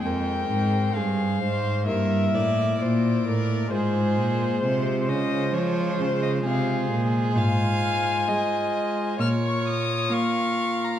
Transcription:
X:1
M:4/4
L:1/16
Q:1/4=65
K:Fm
V:1 name="Violin"
g4 f4 =e4 =d4 | c6 e2 d2 c e f2 z2 | a8 f' d' e'2 d'3 b |]
V:2 name="Violin"
B4 A2 c2 B2 =d2 c2 B2 | A4 c2 c6 A4 | f4 e4 d4 f4 |]
V:3 name="Pipe organ"
[A,Cc]8 [B,=EB]8 | [A,Fc]16 | [A,Fc]8 [FB]8 |]
V:4 name="Pipe organ" clef=bass
F,,2 A,,2 G,,2 A,,2 G,,2 =A,,2 B,,2 A,,2 | A,,2 B,,2 C,2 D,2 F,2 D,2 C,2 B,,2 | A,,4 A,4 B,,4 B,4 |]
V:5 name="Cello" clef=bass
F,,2 A,,2 G,,2 A,,2 G,,2 =A,,2 B,,2 A,,2 | A,,2 B,,2 C,2 D,2 F,2 D,2 C,2 B,,2 | A,,4 A,4 B,,4 B,4 |]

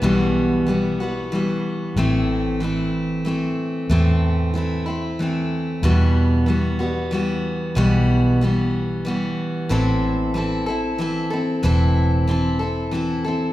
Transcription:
X:1
M:3/4
L:1/8
Q:1/4=93
K:Em
V:1 name="Steel-string acoustic guitar"
[E,,B,,E,G,B,F]2 [E,G,B,F] [E,G,B,F] [E,G,B,F]2 | [A,,E,A,CE]2 [E,A,CE]2 [E,A,CE]2 | [A,,E,A,CE]2 [E,A,CE] [A,CE] [E,A,CE]2 | [E,,B,,E,G,B,F]2 [E,G,B,F] [E,G,B,F] [E,G,B,F]2 |
[E,,B,,E,G,B,F]2 [E,G,B,F]2 [E,G,B,F]2 | [A,,E,CEA]2 [E,CEA] [CEA] [E,CEA] [CEA] | [A,,E,CEA]2 [E,CEA] [CEA] [E,CEA] [CEA] |]
V:2 name="Fingered electric bass" clef=bass
B,,,6 | A,,,6 | E,,6 | E,,6 |
B,,,6 | A,,,6 | E,,,6 |]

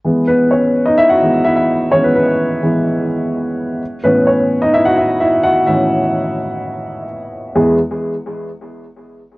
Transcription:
X:1
M:4/4
L:1/16
Q:1/4=128
K:E
V:1 name="Upright piano"
z2 [B,B]2 [Cc]3 [Dd] [Ee] [Ff]3 [Ee] [Ee]3 | [Cc] [B,B] [B,B]8 z6 | z2 [B,B]2 [Cc]3 [Dd] [Ee] [Ff] [Ee]2 [Ee]2 [Ff]2 | [Ee]12 z4 |
[G,B,EG]2 z12 z2 |]
V:2 name="Upright piano" clef=bass
[E,G,B,]6 z4 [E,G,B,]2 z4 | [E,G,B,]6 [E,G,B,]2 z8 | z2 [A,,E,C]12- [A,,E,C]2 | [A,,E,C]2 z12 z2 |
E,,2 z12 z2 |]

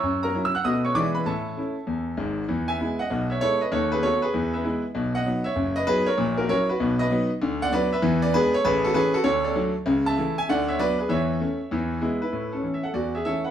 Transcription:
X:1
M:4/4
L:1/16
Q:"Swing" 1/4=195
K:A
V:1 name="Grand piano"
[c_bc']2 [^A^a]3 e' [ff']2 [^d^d']2 [cc']2 [=d=d']2 [=B=b]2 | [Aea]12- [Aea]2 z2 | [K:E] z2 [eg]4 [df]4 [ce]2 [Ac]2 [Bd]2 | [Ac]2 [GB]2 [Ac]2 [GB]4 [Be]4 z2 |
z2 [df]4 [ce]4 [Bd]2 [GB]2 [^Ac]2- | [^Ac]2 [FA]2 [Ac]2 [FB]4 [Bd]4 z2 | [K:A] z2 [df]2 [Bd]2 [Be]4 [Bd]2 [GB]2 [Ac]2 | [GB]2 [FA]2 [GB]2 [FA]2 [Ac]2 [Ad]4 z2 |
z2 [ea]4 [eg]2 [df]2 [ce]2 [Bd]2 [GB]2 | [ce]12 z2 [EB]2- | [EB]2 [CA]3 e [Af]2 [Fd]2 [Ge]2 [Ae]2 [Bf]2 |]
V:2 name="Grand piano" clef=bass
F,,4 [F,CE]4 [B,,A,B,F]4 [E,G,B,E]4 | A,,4 [A,CE]4 E,,4 [G,,,G,,]4 | [K:E] [E,,E,]4 [G,B,E]4 [B,,,B,,]4 [G,B,E]4 | [D,,D,]4 [A,B,F]4 [E,,E,]4 [G,B,E]4 |
[B,,,B,,]4 [F,B,D]4 [F,,,F,,]4 [F,B,D]4 | [^A,,,^A,,]4 [F,CE]4 [B,,,B,,]4 [F,B,D]4 | [K:A] [D,,D,]4 [F,B,D]4 [E,,E,]4 [G,B,D]4 | [A,,,A,,]4 [E,A,C]4 [D,,D,]4 [F,A,D]4 |
[C,,C,]4 [E,A,E]4 [D,,D,]4 [F,B,D]4 | [E,,E,]4 [A,C]4 [E,,E,]4 [G,B,E]4 | A,,4 [E,A,C]4 E,,4 [E,A,C]4 |]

